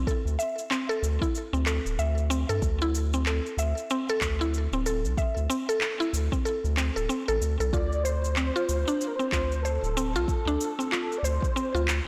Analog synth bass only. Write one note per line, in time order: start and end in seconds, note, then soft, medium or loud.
0.25 0.37 D2 loud
1.03 1.19 D2 medium
1.53 1.79 D2 loud
1.85 1.96 D1 medium
1.99 2.45 D2 loud
2.49 2.60 G2 medium
2.62 3.40 D2 loud
3.57 3.74 D2 medium
4.21 4.68 D2 medium
4.72 5.05 D1 loud
5.03 5.15 C2 medium
5.37 5.48 D2 medium
6.13 6.29 D2 loud
6.64 6.90 D2 loud
6.96 7.07 D1 medium
7.28 7.39 A1 medium
7.41 7.57 D2 medium
7.60 7.71 C2 medium
7.73 8.51 D2 loud
8.69 8.85 D2 medium
9.32 9.79 D2 medium
9.83 10.15 D1 loud
10.14 10.25 C2 medium
10.46 10.57 D2 medium
11.23 11.39 D2 medium
11.74 12.01 D2 loud